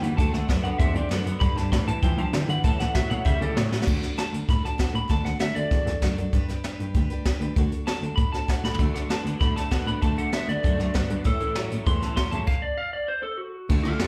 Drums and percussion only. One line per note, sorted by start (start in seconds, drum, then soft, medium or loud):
0.03 closed hi-hat medium
0.18 kick loud
0.18 closed hi-hat medium
0.34 snare soft
0.34 closed hi-hat medium
0.49 kick medium
0.49 snare loud
0.49 closed hi-hat medium
0.64 closed hi-hat medium
0.80 kick loud
0.80 closed hi-hat medium
0.95 closed hi-hat medium
1.11 snare loud
1.11 closed hi-hat medium
1.26 closed hi-hat medium
1.41 kick loud
1.41 closed hi-hat medium
1.57 snare soft
1.57 closed hi-hat medium
1.72 kick medium
1.72 snare loud
1.72 closed hi-hat medium
1.88 closed hi-hat medium
2.03 kick loud
2.03 closed hi-hat medium
2.18 closed hi-hat medium
2.33 snare loud
2.33 closed hi-hat medium
2.49 closed hi-hat medium
2.64 kick loud
2.64 closed hi-hat medium
2.80 snare soft
2.80 closed hi-hat medium
2.95 kick medium
2.95 snare loud
2.95 closed hi-hat medium
3.10 closed hi-hat medium
3.26 kick loud
3.26 closed hi-hat medium
3.42 closed hi-hat medium
3.57 snare loud
3.57 closed hi-hat medium
3.72 snare medium
3.82 snare medium
3.87 kick loud
3.87 crash medium
4.03 snare soft
4.03 closed hi-hat medium
4.18 snare loud
4.18 closed hi-hat medium
4.34 closed hi-hat medium
4.49 kick loud
4.49 snare soft
4.49 closed hi-hat medium
4.65 snare soft
4.65 closed hi-hat medium
4.79 kick medium
4.79 snare loud
4.79 closed hi-hat medium
4.95 closed hi-hat medium
5.09 kick loud
5.09 snare soft
5.09 closed hi-hat medium
5.25 snare soft
5.25 closed hi-hat medium
5.40 snare loud
5.40 closed hi-hat medium
5.56 closed hi-hat medium
5.71 kick loud
5.71 snare soft
5.71 closed hi-hat medium
5.87 snare soft
5.87 closed hi-hat medium
6.02 kick medium
6.02 snare loud
6.02 closed hi-hat medium
6.18 closed hi-hat medium
6.33 kick loud
6.33 snare soft
6.33 closed hi-hat medium
6.49 snare soft
6.49 closed hi-hat medium
6.64 snare loud
6.64 closed hi-hat medium
6.80 closed hi-hat medium
6.94 kick loud
6.94 closed hi-hat medium
7.10 closed hi-hat medium
7.25 kick medium
7.25 snare loud
7.25 closed hi-hat medium
7.41 closed hi-hat medium
7.56 kick loud
7.56 closed hi-hat medium
7.72 closed hi-hat medium
7.87 snare loud
7.87 closed hi-hat medium
8.03 closed hi-hat medium
8.18 kick loud
8.18 closed hi-hat medium
8.34 snare soft
8.34 closed hi-hat medium
8.49 kick medium
8.49 snare loud
8.49 closed hi-hat medium
8.64 snare medium
8.74 floor tom medium
8.79 kick loud
8.79 closed hi-hat medium
8.95 snare soft
8.95 closed hi-hat medium
9.10 snare loud
9.10 closed hi-hat medium
9.26 closed hi-hat medium
9.41 kick loud
9.41 snare soft
9.41 closed hi-hat medium
9.57 snare soft
9.57 closed hi-hat medium
9.72 kick medium
9.72 snare loud
9.72 closed hi-hat medium
9.88 closed hi-hat medium
10.03 kick loud
10.03 closed hi-hat medium
10.18 closed hi-hat medium
10.33 snare loud
10.33 closed hi-hat medium
10.49 closed hi-hat medium
10.64 kick loud
10.64 closed hi-hat medium
10.80 snare soft
10.80 closed hi-hat medium
10.95 kick medium
10.95 snare loud
10.95 closed hi-hat medium
11.10 closed hi-hat medium
11.25 kick loud
11.25 closed hi-hat medium
11.40 closed hi-hat medium
11.55 snare loud
11.55 closed hi-hat medium
11.71 closed hi-hat medium
11.87 kick loud
11.87 closed hi-hat medium
12.02 snare soft
12.02 closed hi-hat medium
12.17 kick medium
12.17 snare loud
12.17 closed hi-hat medium
12.32 closed hi-hat medium
12.47 kick loud
12.47 crash medium
13.69 kick loud
13.69 ride medium
13.85 ride medium
13.99 snare loud
13.99 ride medium